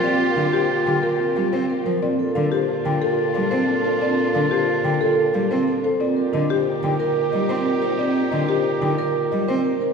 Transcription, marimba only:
\new Staff \with { instrumentName = "Marimba" } { \time 6/4 \key d \phrygian \tempo 4 = 181 d''8 r8 f''8 g'8 r8 g''8 bes'8 r8 f''8 c''8 r8 bes'8 | d''8 r8 f''8 g'8 r8 g''8 a'8 r8 f''8 c''8 r8 a'8 | d''8 r8 f''8 g'8 r8 g''8 a'8 r8 f''8 c''8 r8 a'8 | d''8 r8 ees''8 g'8 r8 g''8 bes'8 r8 ees''8 c''8 r8 bes'8 |
d''8 r8 ees''8 g'8 r8 g''8 bes'8 r8 ees''8 c''8 r8 bes'8 | }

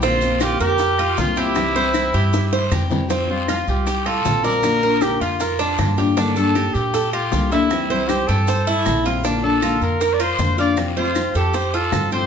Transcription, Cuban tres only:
\new Staff \with { instrumentName = "Cuban tres" } { \time 4/4 \key f \major \tempo 4 = 156 c'4 f'8 bes'4 f'4 g'8~ | g'8 c''4 g'4 c''8 g'4 | c'4 f'4 g'8 f'4 d''8~ | d''8 bes'4 f'8 bes'8 d'4 g'8 |
d'4 g'4 a'8 g'4 e''8~ | e''8 c''4 g'8 c''8 e'4 f'8 | d'4 f'4 bes'8 f'4 f''8~ | f''8 c''4 a'8 c''8 f'4 g'8 | }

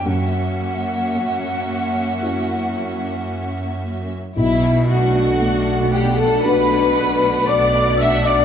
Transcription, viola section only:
\new Staff \with { instrumentName = "Viola section" } { \time 4/4 \key b \minor \tempo 4 = 57 <ais cis'>1 | r8 <a d'>4 <a d'>4 <a d'>4 <a d'>8 | }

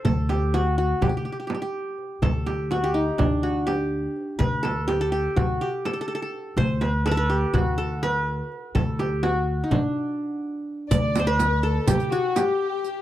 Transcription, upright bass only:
\new Staff \with { instrumentName = "Upright bass" } { \clef bass \time 9/8 \tempo 4. = 83 d,2 d,8 r2 | d,2 d,2 r8 | d,2 d,8 r2 | d,2 d,2 r8 |
d,2 d,16 r2 r16 | d,2 d,8 r2 | }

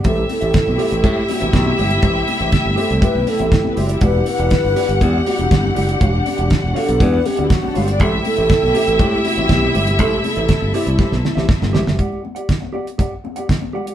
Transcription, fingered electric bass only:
\new Staff \with { instrumentName = "Fingered electric bass" } { \clef bass \time 4/4 \key a \dorian \tempo 4 = 120 a,,8 r16 a,,16 r16 b,,16 r16 a,,16 a,8 r16 a,,16 b,,8 g,,8 | a,,8 r16 a,,16 r16 g,,16 r16 c,16 r16 b,,16 r16 a,,16 r8 fis,,8 | e,,8 r16 e,,16 r16 g,,16 r16 g,,16 e,8 r16 e,,16 g,,8 fis,,8 | e,,8 r16 e,,16 r16 e,,16 r16 b,,16 e,8 r16 d,16 r8 g,,8 |
a,,8 r16 a,,16 r16 b,,16 r16 a,,16 a,8 r16 a,,16 b,,8 g,,8 | a,,8 r16 a,,16 r16 g,,16 r16 c,16 r16 b,,16 r16 a,,16 r16 g,,16 a,,16 fis,,16 | r1 | }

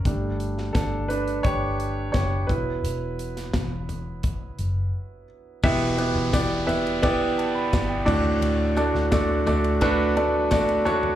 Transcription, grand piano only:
<<
  \new Staff \with { instrumentName = "Grand piano" } { \time 4/4 \key e \dorian \tempo 4 = 86 << { r4 <d' a'>8 <d' b'>8 <g' cis''>4 <g' cis''>8 b'8~ | b'2.~ b'8 r8 | r2 r8 a''16 b''8 g''8 r16 | r1 | } \\ { r1 | r1 | <b e' g' b' e''>8 <b e' g' b' e''>8 <b e' g' b' d''>8 <b e' g' b' e''>8 <b e' g' b' d''>8 r4 <a d' fis' a' d''>8~ | <a d' fis' a' d''>8 <a d' fis' a' d''>8 <a d' fis' a' d''>8 <a d' fis' a' d''>8 <a d' fis' a' b'>8 <a d' fis' a' d''>8 <a d' fis' a' d''>8 <a d' fis' a' cis''>8 | } >> }
  \new Staff \with { instrumentName = "Grand piano" } { \clef bass \time 4/4 \key e \dorian <g a d'>4. r2 <fis b e'>8~ | <fis b e'>4 r2. | b,4. r2 a,8~ | a,4 r2. | }
>>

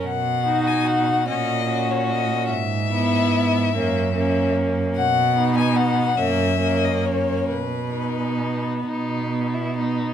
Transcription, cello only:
\new Staff \with { instrumentName = "Cello" } { \clef bass \time 6/8 \key b \major \tempo 4. = 48 b,4. ais,4. | gis,4. fis,4. | b,4. fis,4. | b,4. b,4. | }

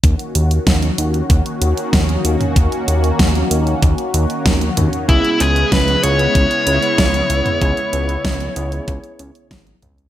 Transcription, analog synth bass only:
\new Staff \with { instrumentName = "Analog synth bass" } { \clef bass \time 4/4 \key dis \phrygian \tempo 4 = 95 dis,8 dis,8 dis,8 dis,8 dis,8 dis,8 dis,8 dis,8 | dis,8 dis,8 dis,8 dis,8 dis,8 dis,8 dis,8 dis,8 | cis,8 cis,8 cis,8 cis,8 cis,8 cis,8 cis,8 cis,8 | cis,8 cis,8 cis,8 cis,8 cis,8 cis,8 gis,,8 cis,8 | }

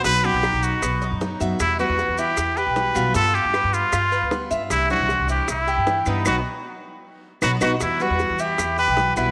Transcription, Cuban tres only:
\new Staff \with { instrumentName = "Cuban tres" } { \time 4/4 \key e \minor \tempo 4 = 154 b4 dis'4 b8 dis'4 e''8~ | e''8 b'4 e'4 g'4 f'8 | f'4 b'4 f'8 b'4 e''8~ | e''8 c''4 e'4 g'4 b8 |
<b dis' fis'>8 r2 r8 <b dis' fis'>8 <b dis' fis'>8 | r8 b'4 e'4 g'4 e'8 | }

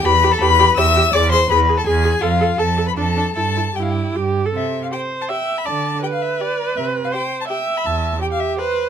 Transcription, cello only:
\new Staff \with { instrumentName = "Cello" } { \clef bass \time 3/4 \key c \major \tempo 4 = 164 e,4 e,4 e,4 | e,4 e,4 e,4 | f,4 f,4 f,4 | g,4 g,4 g,4 |
c4 r2 | d4 r2 | c4 r2 | e,4 r2 | }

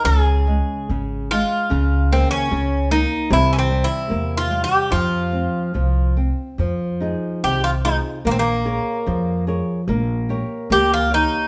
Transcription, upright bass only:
\new Staff \with { instrumentName = "Upright bass" } { \clef bass \time 2/4 \key f \minor \tempo 4 = 73 des,4 aes,,4 | des,4 des,4 | c,4 e,4 | f,4 c,4 |
f,4 c,4 | bes,,4 f,4 | bes,,4 des,4 | }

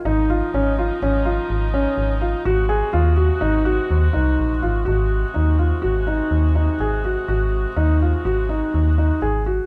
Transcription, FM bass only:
\new Staff \with { instrumentName = "FM bass" } { \clef bass \time 5/4 \key aes \mixolydian \tempo 4 = 124 aes,,4 aes,,4 aes,,4 aes,,4 aes,,4 | aes,,4 ees,4 aes,,4 ees,8 c,8 bes,,8 aes,,8 | aes,,4 ees,4 aes,,4 ees,4 aes,,4 | aes,,4 ees,4 aes,,4 ees,4 aes,,4 | }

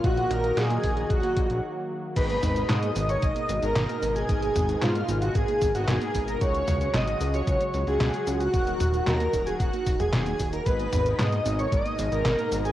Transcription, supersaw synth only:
\new Staff \with { instrumentName = "Supersaw synth" } { \time 4/4 \key gis \minor \tempo 4 = 113 fis'8 ais'8 gis'4 fis'4 r4 | b'4 dis''8. cis''16 dis''8. ais'4 gis'16~ | gis'4 eis'8. fis'16 gis'8. fis'16 gis'8. ais'16 | cis''4 dis''8. cis''16 cis''8. gis'4 fis'16~ |
fis'4 ais'8. gis'16 fis'8. gis'16 gis'8. ais'16 | b'4 dis''8. cis''16 dis''8. ais'4 gis'16 | }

